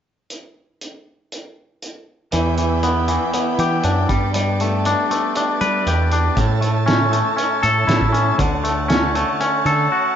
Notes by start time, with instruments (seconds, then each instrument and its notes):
0.30 closed hi-hat
0.81 closed hi-hat
1.32 closed hi-hat
1.82 closed hi-hat
2.32 fingered electric bass E2, clean electric guitar E3, transistor combo organ B3 E4 D5 G5, closed hi-hat
2.58 clean electric guitar E3, closed hi-hat
2.83 clean electric guitar B3, closed hi-hat
3.08 clean electric guitar E3, closed hi-hat
3.34 clean electric guitar B3, closed hi-hat
3.58 fingered electric bass E3, clean electric guitar G4, closed hi-hat
3.84 fingered electric bass F#2, clean electric guitar D4, closed hi-hat
4.09 fingered electric bass G2, clean electric guitar G3, transistor combo organ B3 G4 A5, kick, closed hi-hat
4.34 clean electric guitar G3, closed hi-hat
4.60 clean electric guitar A3, closed hi-hat
4.85 clean electric guitar D4, closed hi-hat
5.11 clean electric guitar A3, closed hi-hat
5.36 clean electric guitar D4, closed hi-hat
5.61 fingered electric bass G3, clean electric guitar B4, closed hi-hat
5.86 fingered electric bass E2, clean electric guitar G4, closed hi-hat
6.12 clean electric guitar D4, closed hi-hat
6.35 fingered electric bass A2, clean electric guitar A2, transistor combo organ C#4 A4 E5, kick, closed hi-hat
6.61 clean electric guitar A3, closed hi-hat
6.86 clean electric guitar C#4, snare, closed hi-hat
7.11 clean electric guitar A3, closed hi-hat
7.37 clean electric guitar C#4, closed hi-hat
7.63 fingered electric bass A2, clean electric guitar A4, closed hi-hat
7.87 fingered electric bass A2, clean electric guitar E4, snare, closed hi-hat
8.01 kick
8.12 clean electric guitar C#4, closed hi-hat
8.38 fingered electric bass D2, clean electric guitar D3, transistor combo organ C#5 F#5 A5, kick, closed hi-hat
8.64 clean electric guitar A3, closed hi-hat
8.88 clean electric guitar C#4, snare, closed hi-hat
9.15 clean electric guitar A3, closed hi-hat
9.40 clean electric guitar C#4, closed hi-hat
9.65 fingered electric bass D3, clean electric guitar A4, closed hi-hat
9.92 clean electric guitar F#4